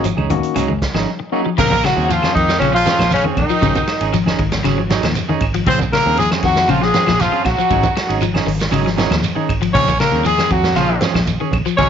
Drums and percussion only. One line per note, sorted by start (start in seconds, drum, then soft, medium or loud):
0.04 closed hi-hat medium
0.04 shekere medium
0.18 high conga medium
0.18 claves medium
0.30 closed hi-hat medium
0.30 high conga medium
0.30 low conga medium
0.30 shekere soft
0.43 closed hi-hat soft
0.56 closed hi-hat medium
0.56 claves medium
0.56 shekere medium
0.70 high conga medium
0.82 kick medium
0.82 snare medium
0.82 closed hi-hat soft
0.82 shekere soft
0.95 snare medium
0.95 claves medium
1.58 kick loud
1.58 snare soft
1.58 crash medium
1.58 high conga soft
1.58 low conga medium
1.58 shekere medium
1.71 kick medium
1.71 high conga loud
1.71 shekere medium
1.84 snare medium
1.84 ride bell soft
1.84 claves medium
1.99 shekere soft
2.10 ride bell medium
2.10 high conga soft
2.10 shekere loud
2.23 snare medium
2.23 high conga medium
2.23 claves medium
2.36 kick medium
2.36 ride bell soft
2.36 shekere soft
2.49 snare medium
2.49 shekere medium
2.61 ride bell medium
2.61 claves medium
2.61 shekere medium
2.85 snare medium
2.85 ride bell medium
2.85 high conga loud
2.85 shekere medium
2.99 snare medium
2.99 low conga medium
2.99 claves medium
2.99 shekere soft
3.11 ride bell medium
3.11 high conga medium
3.11 shekere loud
3.24 high conga medium
3.37 kick medium
3.37 ride bell soft
3.37 high conga medium
3.37 claves medium
3.37 shekere soft
3.49 shekere medium
3.62 kick loud
3.62 ride bell medium
3.62 high conga soft
3.62 low conga medium
3.62 shekere medium
3.75 kick medium
3.75 high conga loud
3.75 shekere medium
3.87 snare medium
3.87 ride bell medium
3.87 claves medium
4.01 ride bell medium
4.01 shekere soft
4.13 ride bell medium
4.13 high conga soft
4.13 shekere loud
4.26 snare medium
4.26 high conga medium
4.26 claves medium
4.39 kick medium
4.39 ride bell medium
4.39 shekere soft
4.52 snare medium
4.52 ride bell medium
4.52 low conga medium
4.52 shekere medium
4.65 snare soft
4.65 ride bell medium
4.65 claves medium
4.65 shekere medium
4.90 snare medium
4.90 ride bell medium
4.90 high conga medium
4.90 shekere medium
5.03 snare medium
5.03 ride bell medium
5.03 low conga medium
5.03 claves medium
5.03 shekere soft
5.15 ride bell medium
5.15 high conga medium
5.15 shekere loud
5.29 high conga medium
5.41 kick medium
5.41 ride bell medium
5.41 claves medium
5.41 shekere soft
5.54 ride bell medium
5.54 shekere medium
5.66 kick loud
5.66 ride bell medium
5.66 high conga soft
5.66 low conga medium
5.66 shekere medium
5.79 kick medium
5.79 high conga loud
5.79 shekere medium
5.93 snare medium
5.93 ride bell medium
5.93 claves medium
6.07 shekere soft
6.17 ride bell medium
6.17 high conga soft
6.17 shekere medium
6.31 snare medium
6.31 high conga medium
6.31 claves medium
6.43 kick medium
6.43 snare soft
6.43 ride bell medium
6.43 shekere soft
6.56 snare medium
6.56 shekere medium
6.69 ride bell soft
6.69 claves medium
6.69 shekere medium
6.82 snare soft
6.94 snare medium
6.94 ride bell medium
6.94 high conga medium
6.94 shekere medium
7.07 snare medium
7.07 low conga medium
7.07 claves medium
7.07 shekere soft
7.19 snare soft
7.19 ride bell medium
7.19 high conga medium
7.19 shekere loud
7.45 kick medium
7.45 snare soft
7.45 ride bell medium
7.45 claves medium
7.45 shekere soft
7.59 shekere medium
7.70 kick medium
7.70 ride bell medium
7.70 high conga soft
7.70 low conga medium
7.70 shekere medium
7.83 kick medium
7.83 high conga loud
7.83 shekere loud
7.97 snare medium
7.97 ride bell medium
7.97 claves medium
8.10 ride bell medium
8.10 shekere soft
8.21 ride bell medium
8.21 high conga soft
8.21 shekere medium
8.35 snare medium
8.35 high conga medium
8.35 claves medium
8.46 open hi-hat medium
8.46 shekere soft
8.59 snare medium
8.59 ride bell medium
8.59 shekere medium
8.72 ride bell medium
8.72 claves medium
8.72 shekere medium
8.87 snare soft
8.98 snare medium
8.98 ride bell medium
8.98 high conga loud
8.98 shekere medium
9.11 snare medium
9.11 ride bell medium
9.11 low conga medium
9.11 claves medium
9.11 shekere soft
9.23 ride bell medium
9.23 high conga medium
9.23 shekere loud
9.49 kick medium
9.49 ride bell medium
9.49 claves medium
9.49 shekere soft
9.62 ride bell medium
9.62 shekere medium
9.75 kick medium
9.75 ride bell medium
9.75 high conga soft
9.75 low conga medium
9.75 shekere medium
9.87 kick medium
9.87 high conga loud
9.87 shekere medium
10.00 snare medium
10.00 ride bell medium
10.00 claves medium
10.13 shekere soft
10.25 ride bell medium
10.25 high conga soft
10.25 shekere medium
10.38 snare medium
10.38 high conga medium
10.38 claves medium
10.50 kick medium
10.50 ride bell medium
10.50 shekere soft
10.63 snare medium
10.63 low conga medium
10.63 shekere medium
10.76 snare soft
10.76 ride bell soft
10.76 claves medium
10.76 shekere medium
11.01 snare medium
11.01 ride bell soft
11.01 high conga loud
11.01 shekere medium
11.14 snare medium
11.14 low conga medium
11.14 claves medium
11.27 ride bell soft
11.27 high conga medium
11.27 shekere medium
11.52 kick medium
11.52 ride bell medium
11.52 high conga medium
11.52 claves medium
11.52 shekere soft
11.66 shekere medium
11.78 kick medium
11.78 ride bell medium
11.78 high conga soft
11.78 low conga medium
11.78 shekere medium